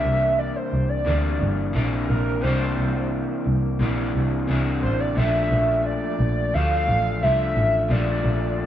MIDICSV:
0, 0, Header, 1, 4, 480
1, 0, Start_track
1, 0, Tempo, 684541
1, 1700, Time_signature, 4, 2, 24, 8
1, 6073, End_track
2, 0, Start_track
2, 0, Title_t, "Soft synth lead"
2, 0, Program_c, 0, 80
2, 0, Note_on_c, 0, 76, 110
2, 271, Note_on_c, 0, 74, 96
2, 281, Note_off_c, 0, 76, 0
2, 392, Note_on_c, 0, 72, 84
2, 402, Note_off_c, 0, 74, 0
2, 624, Note_on_c, 0, 74, 93
2, 635, Note_off_c, 0, 72, 0
2, 1222, Note_off_c, 0, 74, 0
2, 1462, Note_on_c, 0, 70, 96
2, 1697, Note_on_c, 0, 72, 111
2, 1708, Note_off_c, 0, 70, 0
2, 2178, Note_off_c, 0, 72, 0
2, 3380, Note_on_c, 0, 72, 90
2, 3507, Note_on_c, 0, 74, 86
2, 3518, Note_off_c, 0, 72, 0
2, 3624, Note_on_c, 0, 76, 94
2, 3635, Note_off_c, 0, 74, 0
2, 4102, Note_off_c, 0, 76, 0
2, 4106, Note_on_c, 0, 74, 98
2, 4585, Note_on_c, 0, 77, 122
2, 4596, Note_off_c, 0, 74, 0
2, 5066, Note_on_c, 0, 76, 109
2, 5076, Note_off_c, 0, 77, 0
2, 5548, Note_on_c, 0, 74, 96
2, 5558, Note_off_c, 0, 76, 0
2, 6073, Note_off_c, 0, 74, 0
2, 6073, End_track
3, 0, Start_track
3, 0, Title_t, "Clean electric guitar"
3, 0, Program_c, 1, 27
3, 0, Note_on_c, 1, 48, 75
3, 0, Note_on_c, 1, 52, 75
3, 0, Note_on_c, 1, 58, 76
3, 0, Note_on_c, 1, 62, 82
3, 726, Note_off_c, 1, 48, 0
3, 733, Note_off_c, 1, 52, 0
3, 735, Note_on_c, 1, 48, 59
3, 742, Note_on_c, 1, 52, 70
3, 747, Note_off_c, 1, 58, 0
3, 750, Note_on_c, 1, 58, 64
3, 754, Note_off_c, 1, 62, 0
3, 757, Note_on_c, 1, 62, 71
3, 1205, Note_off_c, 1, 48, 0
3, 1214, Note_on_c, 1, 48, 72
3, 1216, Note_off_c, 1, 52, 0
3, 1224, Note_on_c, 1, 52, 67
3, 1229, Note_off_c, 1, 58, 0
3, 1231, Note_on_c, 1, 58, 75
3, 1233, Note_off_c, 1, 62, 0
3, 1236, Note_on_c, 1, 62, 73
3, 1684, Note_off_c, 1, 48, 0
3, 1693, Note_on_c, 1, 48, 82
3, 1699, Note_off_c, 1, 52, 0
3, 1707, Note_on_c, 1, 52, 79
3, 1714, Note_off_c, 1, 58, 0
3, 1714, Note_off_c, 1, 62, 0
3, 1718, Note_on_c, 1, 58, 81
3, 1733, Note_on_c, 1, 62, 87
3, 2650, Note_off_c, 1, 48, 0
3, 2659, Note_off_c, 1, 52, 0
3, 2659, Note_on_c, 1, 48, 70
3, 2668, Note_on_c, 1, 52, 68
3, 2672, Note_off_c, 1, 58, 0
3, 2675, Note_on_c, 1, 58, 79
3, 2680, Note_off_c, 1, 62, 0
3, 2684, Note_on_c, 1, 62, 78
3, 3128, Note_off_c, 1, 48, 0
3, 3136, Note_on_c, 1, 48, 71
3, 3137, Note_off_c, 1, 52, 0
3, 3145, Note_on_c, 1, 52, 77
3, 3155, Note_off_c, 1, 58, 0
3, 3158, Note_off_c, 1, 62, 0
3, 3158, Note_on_c, 1, 58, 69
3, 3161, Note_on_c, 1, 62, 83
3, 3610, Note_off_c, 1, 48, 0
3, 3613, Note_on_c, 1, 46, 74
3, 3622, Note_off_c, 1, 52, 0
3, 3628, Note_on_c, 1, 53, 77
3, 3639, Note_off_c, 1, 58, 0
3, 3642, Note_on_c, 1, 57, 85
3, 3651, Note_off_c, 1, 62, 0
3, 3653, Note_on_c, 1, 62, 83
3, 4576, Note_off_c, 1, 46, 0
3, 4578, Note_off_c, 1, 53, 0
3, 4586, Note_on_c, 1, 53, 58
3, 4589, Note_off_c, 1, 57, 0
3, 4597, Note_on_c, 1, 57, 70
3, 4601, Note_off_c, 1, 62, 0
3, 4604, Note_on_c, 1, 62, 73
3, 5060, Note_off_c, 1, 53, 0
3, 5068, Note_off_c, 1, 57, 0
3, 5068, Note_on_c, 1, 53, 63
3, 5076, Note_on_c, 1, 57, 63
3, 5081, Note_off_c, 1, 62, 0
3, 5084, Note_on_c, 1, 62, 72
3, 5530, Note_on_c, 1, 46, 71
3, 5534, Note_off_c, 1, 53, 0
3, 5543, Note_on_c, 1, 53, 85
3, 5548, Note_off_c, 1, 57, 0
3, 5556, Note_on_c, 1, 57, 73
3, 5568, Note_off_c, 1, 62, 0
3, 5571, Note_on_c, 1, 62, 84
3, 6073, Note_off_c, 1, 46, 0
3, 6073, Note_off_c, 1, 53, 0
3, 6073, Note_off_c, 1, 57, 0
3, 6073, Note_off_c, 1, 62, 0
3, 6073, End_track
4, 0, Start_track
4, 0, Title_t, "Double bass"
4, 0, Program_c, 2, 43
4, 27, Note_on_c, 2, 36, 82
4, 312, Note_off_c, 2, 36, 0
4, 506, Note_on_c, 2, 36, 94
4, 696, Note_off_c, 2, 36, 0
4, 748, Note_on_c, 2, 38, 89
4, 937, Note_off_c, 2, 38, 0
4, 984, Note_on_c, 2, 31, 88
4, 1174, Note_off_c, 2, 31, 0
4, 1227, Note_on_c, 2, 34, 94
4, 1416, Note_off_c, 2, 34, 0
4, 1465, Note_on_c, 2, 34, 92
4, 1655, Note_off_c, 2, 34, 0
4, 1705, Note_on_c, 2, 36, 96
4, 1895, Note_off_c, 2, 36, 0
4, 1946, Note_on_c, 2, 36, 90
4, 2231, Note_off_c, 2, 36, 0
4, 2426, Note_on_c, 2, 36, 100
4, 2657, Note_off_c, 2, 36, 0
4, 2661, Note_on_c, 2, 34, 91
4, 2852, Note_off_c, 2, 34, 0
4, 2904, Note_on_c, 2, 36, 89
4, 3094, Note_off_c, 2, 36, 0
4, 3144, Note_on_c, 2, 36, 94
4, 3382, Note_off_c, 2, 36, 0
4, 3385, Note_on_c, 2, 33, 83
4, 3575, Note_off_c, 2, 33, 0
4, 3625, Note_on_c, 2, 34, 92
4, 3815, Note_off_c, 2, 34, 0
4, 3864, Note_on_c, 2, 34, 90
4, 4150, Note_off_c, 2, 34, 0
4, 4341, Note_on_c, 2, 34, 101
4, 4532, Note_off_c, 2, 34, 0
4, 4584, Note_on_c, 2, 38, 94
4, 4774, Note_off_c, 2, 38, 0
4, 4821, Note_on_c, 2, 33, 86
4, 5055, Note_off_c, 2, 33, 0
4, 5059, Note_on_c, 2, 36, 102
4, 5251, Note_off_c, 2, 36, 0
4, 5299, Note_on_c, 2, 33, 95
4, 5491, Note_off_c, 2, 33, 0
4, 5538, Note_on_c, 2, 34, 104
4, 5730, Note_off_c, 2, 34, 0
4, 5780, Note_on_c, 2, 34, 97
4, 6068, Note_off_c, 2, 34, 0
4, 6073, End_track
0, 0, End_of_file